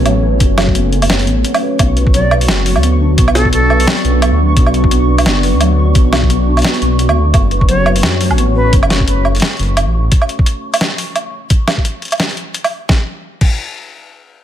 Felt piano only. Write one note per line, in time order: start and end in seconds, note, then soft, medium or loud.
0.00 0.06 F#3 loud
0.00 0.75 B3 loud
0.00 0.93 C#4 medium
0.00 0.41 F#4 medium
0.00 0.23 B4 medium
0.06 0.22 F#3 loud
0.23 0.40 B4 medium
0.41 0.56 F#4 medium
0.58 0.69 F#3 medium
0.75 0.91 B3 medium
0.93 1.03 C#4 medium
1.10 1.26 B3 loud
1.27 1.43 B3 medium
1.44 1.61 B3 medium
1.62 1.78 B4 medium
1.79 1.96 B3 medium
1.97 2.13 B4 medium
2.14 2.30 F#3 loud
2.31 2.48 B4 medium
2.49 2.65 F#4 medium
2.66 2.77 F#3 medium
2.83 2.99 B3 medium
3.01 3.12 D4 medium
3.18 3.34 B3 loud
3.35 3.51 B3 medium
3.53 3.69 B3 medium
3.70 3.86 B4 medium
3.87 4.03 F#3 loud
4.05 4.21 B4 medium
4.22 4.38 F#4 medium
4.40 4.50 F#3 medium
4.57 4.73 B3 medium
4.74 4.85 D4 medium
4.92 5.07 B3 loud
5.09 5.25 B3 medium
5.26 5.43 B3 medium
5.43 5.59 B4 medium
5.61 5.77 F#3 loud
5.78 5.95 B4 medium
5.95 6.11 F#4 medium
6.13 6.24 F#3 medium
6.30 6.46 B3 medium
6.47 6.58 D4 medium
6.65 6.81 B3 loud
6.82 6.99 B3 medium
6.99 7.15 F#4 medium
7.17 7.28 A3 medium
7.34 7.51 B3 medium
7.51 7.67 B4 medium
7.69 7.85 F#3 loud
7.86 8.03 B4 medium
8.04 8.19 F#4 medium
8.21 8.32 F#3 medium
8.38 8.54 B3 medium
8.56 8.66 C#4 medium